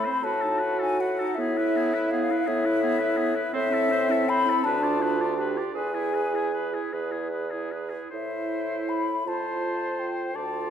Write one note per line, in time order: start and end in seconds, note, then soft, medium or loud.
0.00 0.25 B5 loud
0.04 0.25 C4 medium
0.04 0.23 C5 medium
0.23 1.24 A2 medium
0.23 1.39 F#4 medium
0.23 0.45 F#4 medium
0.23 0.42 B4 medium
0.23 0.80 A5 medium
0.41 0.64 D#4 medium
0.41 0.60 A4 medium
0.59 0.81 B4 medium
0.63 0.84 F#4 medium
0.79 1.00 D#4 medium
0.79 0.99 A4 medium
0.79 1.02 G#5 loud
1.00 1.22 F#4 medium
1.00 1.20 B4 medium
1.00 1.36 F#5 loud
1.19 1.37 D#4 medium
1.19 1.37 A4 medium
1.35 2.35 A2 medium
1.35 1.59 B3 medium
1.35 2.47 E4 loud
1.35 2.12 E5 loud
1.40 1.59 G#4 medium
1.57 1.77 E4 medium
1.57 1.79 B4 medium
1.76 1.95 B3 medium
1.76 1.95 G#4 medium
1.94 2.12 E4 medium
1.94 2.11 B4 medium
2.11 2.32 B3 medium
2.11 2.32 G#4 medium
2.11 2.49 F5 loud
2.31 2.50 E4 medium
2.31 2.48 B4 medium
2.47 3.41 A2 loud
2.47 2.67 B3 medium
2.47 3.52 E4 loud
2.47 2.67 G#4 medium
2.47 3.54 E5 loud
2.65 2.82 E4 medium
2.65 2.81 B4 medium
2.82 3.02 B3 medium
2.82 3.00 G#4 medium
2.99 3.18 E4 medium
2.99 3.18 B4 medium
3.17 3.36 B3 medium
3.17 3.36 G#4 medium
3.35 3.52 E4 medium
3.35 3.53 B4 medium
3.53 4.51 A2 loud
3.53 3.72 C4 medium
3.53 4.67 C4 loud
3.53 3.74 C5 medium
3.53 4.30 E5 loud
3.70 3.91 E4 medium
3.70 3.93 A4 medium
3.89 4.11 C4 medium
3.89 4.12 C5 medium
4.09 4.27 E4 medium
4.09 4.28 A4 medium
4.28 4.47 C4 medium
4.28 4.50 C5 medium
4.28 4.65 B5 loud
4.46 4.63 E4 medium
4.46 4.65 A4 medium
4.64 5.61 D2 loud
4.64 4.84 D4 medium
4.64 5.02 D4 loud
4.64 4.85 B4 medium
4.64 5.46 A5 loud
4.82 5.02 F4 medium
4.82 5.04 D5 medium
5.00 5.20 D4 medium
5.00 5.39 F4 medium
5.00 5.22 B4 medium
5.18 5.36 F4 medium
5.18 5.38 D5 medium
5.36 5.58 D4 medium
5.36 5.73 G4 loud
5.36 5.59 B4 medium
5.57 5.73 F4 medium
5.57 5.75 D5 medium
5.74 6.77 E2 medium
5.74 7.47 G#4 loud
5.74 5.95 G#4 medium
5.74 5.96 B4 medium
5.74 6.87 G#5 medium
5.93 6.15 E4 medium
5.93 6.15 G#4 medium
6.13 6.35 G#4 medium
6.13 6.37 B4 medium
6.34 6.52 E4 medium
6.34 6.53 G#4 medium
6.53 6.75 G#4 medium
6.53 6.75 B4 medium
6.73 6.94 E4 medium
6.73 6.94 G#4 medium
6.93 7.98 E2 medium
6.93 7.13 G#4 medium
6.93 7.13 B4 medium
7.11 7.31 E4 medium
7.11 7.30 G#4 soft
7.30 7.54 G#4 soft
7.30 7.52 B4 soft
7.51 7.74 E4 medium
7.51 7.73 G#4 medium
7.71 7.95 G#4 medium
7.71 7.91 B4 soft
7.89 8.10 G#4 soft
7.94 8.11 E4 soft
8.10 9.22 A2 medium
8.10 9.26 E4 medium
8.10 9.29 E4 medium
8.10 9.10 C5 medium
8.10 8.90 E5 medium
8.89 9.29 B5 medium
9.24 10.36 F2 medium
9.24 10.33 F4 medium
9.24 10.18 F4 medium
9.24 10.37 C5 medium
9.24 10.00 A5 medium
9.99 10.37 G5 medium
10.34 10.70 D2 medium
10.34 10.70 F4 medium
10.34 10.70 A4 medium
10.34 10.70 D5 medium
10.34 10.70 A5 medium